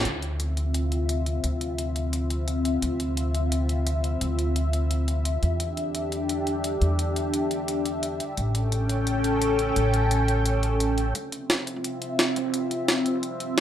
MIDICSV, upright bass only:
0, 0, Header, 1, 2, 480
1, 0, Start_track
1, 0, Key_signature, -1, "minor"
1, 0, Tempo, 346821
1, 72, Time_signature, 4, 2, 24, 8
1, 18825, End_track
2, 0, Start_track
2, 0, Title_t, "Upright bass"
2, 0, Program_c, 0, 32
2, 71, Note_on_c, 0, 38, 83
2, 1969, Note_off_c, 0, 38, 0
2, 1992, Note_on_c, 0, 38, 78
2, 3889, Note_off_c, 0, 38, 0
2, 3911, Note_on_c, 0, 38, 81
2, 5809, Note_off_c, 0, 38, 0
2, 5831, Note_on_c, 0, 38, 82
2, 7489, Note_off_c, 0, 38, 0
2, 7511, Note_on_c, 0, 40, 84
2, 9409, Note_off_c, 0, 40, 0
2, 9434, Note_on_c, 0, 40, 86
2, 11330, Note_off_c, 0, 40, 0
2, 11593, Note_on_c, 0, 33, 83
2, 13490, Note_off_c, 0, 33, 0
2, 13511, Note_on_c, 0, 33, 84
2, 15409, Note_off_c, 0, 33, 0
2, 15433, Note_on_c, 0, 38, 92
2, 15779, Note_off_c, 0, 38, 0
2, 16280, Note_on_c, 0, 36, 77
2, 17094, Note_off_c, 0, 36, 0
2, 17113, Note_on_c, 0, 33, 98
2, 18199, Note_off_c, 0, 33, 0
2, 18199, Note_on_c, 0, 36, 79
2, 18534, Note_off_c, 0, 36, 0
2, 18554, Note_on_c, 0, 43, 85
2, 18825, Note_off_c, 0, 43, 0
2, 18825, End_track
0, 0, End_of_file